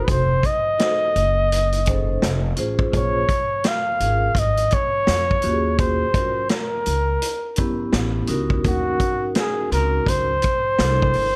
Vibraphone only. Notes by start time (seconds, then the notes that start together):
Already playing: D#4 F#4 A4 C5
0.78 D#4 F#4 A4 C5
1.85 C#4 D#4 G#4 C5
1.93 A4
2.56 C#4 F4 G#4 C5
2.92 C#4 F4 G#4 C5
4.00 C#4 F4 G#4 A#4
5.42 C#4 F4 F#4 G4
5.51 G#4
6.14 C#4 F4 F#4 A#4
7.57 B3 C#4 E4 G4
8.28 C#4 D#4 F#4 A#4
8.64 C#4 D#4 F#4 A#4
9.71 C4 D#4 F#4 A#4
9.77 C#4
10.79 D4 E4 A4 A#4